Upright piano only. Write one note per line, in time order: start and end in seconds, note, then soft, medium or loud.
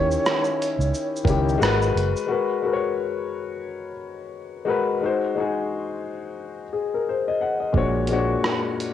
0.00 0.83 D#3 medium
0.00 0.84 C#4 medium
0.00 0.85 E4 medium
0.00 0.85 G4 medium
1.25 1.60 D#3 medium
1.25 1.61 C#4 medium
1.25 1.61 E4 medium
1.30 1.62 G4 medium
1.58 2.23 G#3 loud
1.58 2.24 F#4 medium
1.58 2.25 A#4 medium
1.63 2.25 B4 loud
2.27 2.60 G#3 medium
2.27 2.61 F#4 medium
2.27 2.61 A#4 medium
2.32 2.62 B4 medium
2.62 3.90 G#3 medium
2.62 3.91 F#4 medium
2.62 3.92 A#4 medium
2.67 2.72 B4 medium
2.73 3.96 C#5 medium
4.65 4.98 G#3 medium
4.65 4.99 F#4 medium
4.65 4.99 A#4 medium
4.69 5.00 B4 medium
5.01 5.33 G#3 medium
5.01 5.34 D#4 medium
5.01 5.35 F#4 medium
5.05 5.35 C5 medium
5.35 6.63 G#3 medium
5.35 6.64 D#4 medium
5.35 6.64 F#4 medium
5.40 6.65 G#4 medium
6.73 6.91 G#4 medium
6.94 7.07 A#4 medium
7.09 7.26 C5 medium
7.28 7.41 D#5 medium
7.41 7.59 F#5 medium
7.60 7.92 D#5 medium
7.73 8.05 A#2 medium
7.73 8.06 G#3 medium
7.73 8.07 D4 medium
7.73 8.07 F#4 medium
7.77 8.08 C#5 medium
8.08 8.94 A#2 medium
8.08 8.94 G#3 medium
8.08 8.94 D4 medium
8.08 8.94 F#4 medium
8.13 8.94 C#5 medium